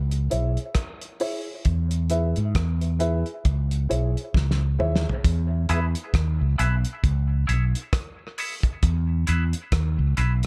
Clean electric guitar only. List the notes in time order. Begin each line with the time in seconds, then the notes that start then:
5.69 E4 G#4 B4 E5
6.58 E4 G#4 B4 E5
7.47 E4 G#4 C#5 E5
8.38 E4 G#4 C#5 E5
9.27 E4 G#4 B4 E5
10.17 E4 G#4 B4 E5